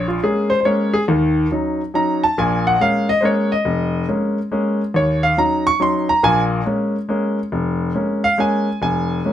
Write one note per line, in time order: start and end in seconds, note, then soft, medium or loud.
0.00 0.17 A#1 medium
0.08 0.22 F4 medium
0.23 0.52 G#3 soft
0.23 0.52 A#3 soft
0.23 0.52 C#4 medium
0.23 0.50 G#4 medium
0.50 0.59 C5 medium
0.61 0.64 C5 medium
0.65 0.94 G#3 medium
0.65 0.95 A#3 soft
0.65 0.95 C#4 medium
0.65 0.92 C#5 medium
0.94 1.02 G#4 medium
1.08 1.45 D#2 medium
1.08 1.45 D#3 medium
1.51 1.80 F#3 soft
1.51 1.80 C#4 soft
1.51 1.81 D#4 medium
1.94 2.23 F#3 soft
1.94 2.23 C#4 soft
1.94 2.23 D#4 medium
1.94 2.21 A#5 medium
2.24 2.37 A5 medium
2.38 2.74 A#1 medium
2.38 2.74 A#2 medium
2.38 2.64 G#5 medium
2.67 2.80 F#5 medium
2.80 3.09 G#3 medium
2.80 3.09 A#3 soft
2.80 3.09 C#4 medium
2.80 3.07 F5 medium
3.09 3.23 D#5 medium
3.21 3.52 G#3 medium
3.21 3.52 A#3 medium
3.21 3.52 C#4 medium
3.21 3.24 C5 medium
3.25 3.51 C#5 medium
3.52 4.05 D#5 medium
3.65 4.02 F1 medium
4.09 4.38 G#3 soft
4.09 4.38 A#3 soft
4.09 4.38 C#4 medium
4.52 4.81 G#3 medium
4.52 4.81 A#3 soft
4.52 4.81 C#4 medium
4.94 5.31 D#2 medium
4.94 5.22 C#5 medium
5.23 5.37 F5 medium
5.37 5.66 F#3 soft
5.37 5.67 C#4 soft
5.37 5.67 D#4 medium
5.37 5.65 A#5 medium
5.67 5.80 C#6 loud
5.80 6.09 F#3 medium
5.80 6.09 C#4 soft
5.80 6.09 D#4 medium
5.80 6.08 C6 medium
6.09 6.23 A#5 medium
6.23 6.60 A#1 medium
6.23 6.60 A#2 medium
6.23 6.40 G#5 loud
6.65 6.95 G#3 soft
6.65 6.95 A#3 soft
6.65 6.95 C#4 medium
7.09 7.38 G#3 medium
7.09 7.38 A#3 medium
7.09 7.38 C#4 medium
7.52 7.89 F1 medium
7.95 8.24 G#3 soft
7.95 8.24 A#3 soft
7.95 8.24 C#4 medium
8.24 8.38 F5 loud
8.38 8.67 G#3 medium
8.38 8.67 A#3 medium
8.38 8.68 C#4 medium
8.38 8.79 G#5 medium
8.82 9.18 F1 medium
8.82 9.33 G#5 medium
9.25 9.33 G#3 soft
9.25 9.33 A#3 soft
9.25 9.33 C#4 medium